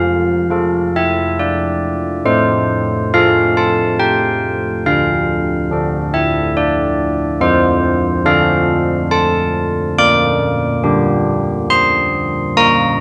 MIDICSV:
0, 0, Header, 1, 2, 480
1, 0, Start_track
1, 0, Key_signature, -1, "major"
1, 0, Tempo, 874636
1, 1240, Time_signature, 3, 2, 24, 8
1, 2195, Tempo, 857143
1, 7237, End_track
2, 0, Start_track
2, 0, Title_t, "Church bells"
2, 0, Program_c, 0, 14
2, 0, Note_on_c, 0, 53, 47
2, 0, Note_on_c, 0, 77, 77
2, 264, Note_off_c, 0, 53, 0
2, 276, Note_on_c, 0, 65, 37
2, 280, Note_on_c, 0, 69, 39
2, 497, Note_off_c, 0, 77, 0
2, 528, Note_on_c, 0, 76, 71
2, 755, Note_off_c, 0, 76, 0
2, 765, Note_on_c, 0, 74, 58
2, 1218, Note_off_c, 0, 65, 0
2, 1220, Note_off_c, 0, 69, 0
2, 1224, Note_off_c, 0, 74, 0
2, 1236, Note_on_c, 0, 57, 47
2, 1238, Note_on_c, 0, 72, 78
2, 1699, Note_off_c, 0, 72, 0
2, 1702, Note_off_c, 0, 57, 0
2, 1722, Note_on_c, 0, 77, 79
2, 1727, Note_on_c, 0, 65, 39
2, 1728, Note_on_c, 0, 69, 45
2, 1949, Note_off_c, 0, 77, 0
2, 1960, Note_on_c, 0, 81, 69
2, 2186, Note_off_c, 0, 81, 0
2, 2193, Note_on_c, 0, 79, 78
2, 2657, Note_off_c, 0, 79, 0
2, 2658, Note_off_c, 0, 65, 0
2, 2658, Note_off_c, 0, 69, 0
2, 2678, Note_on_c, 0, 50, 46
2, 2678, Note_on_c, 0, 77, 68
2, 3142, Note_off_c, 0, 50, 0
2, 3154, Note_on_c, 0, 62, 38
2, 3160, Note_on_c, 0, 69, 39
2, 3372, Note_off_c, 0, 77, 0
2, 3392, Note_on_c, 0, 76, 69
2, 3621, Note_off_c, 0, 76, 0
2, 3633, Note_on_c, 0, 74, 65
2, 4086, Note_off_c, 0, 62, 0
2, 4089, Note_off_c, 0, 69, 0
2, 4091, Note_off_c, 0, 74, 0
2, 4104, Note_on_c, 0, 53, 57
2, 4106, Note_on_c, 0, 72, 77
2, 4569, Note_off_c, 0, 72, 0
2, 4573, Note_off_c, 0, 53, 0
2, 4578, Note_on_c, 0, 62, 49
2, 4579, Note_on_c, 0, 69, 47
2, 4580, Note_on_c, 0, 77, 77
2, 4816, Note_off_c, 0, 77, 0
2, 5058, Note_on_c, 0, 81, 76
2, 5531, Note_off_c, 0, 62, 0
2, 5532, Note_off_c, 0, 69, 0
2, 5533, Note_off_c, 0, 81, 0
2, 5547, Note_on_c, 0, 58, 59
2, 5547, Note_on_c, 0, 86, 97
2, 6015, Note_off_c, 0, 58, 0
2, 6023, Note_on_c, 0, 67, 48
2, 6024, Note_on_c, 0, 62, 51
2, 6485, Note_off_c, 0, 86, 0
2, 6508, Note_on_c, 0, 84, 92
2, 6966, Note_off_c, 0, 67, 0
2, 6967, Note_off_c, 0, 62, 0
2, 6972, Note_off_c, 0, 84, 0
2, 6993, Note_on_c, 0, 58, 62
2, 6995, Note_on_c, 0, 82, 112
2, 7237, Note_off_c, 0, 58, 0
2, 7237, Note_off_c, 0, 82, 0
2, 7237, End_track
0, 0, End_of_file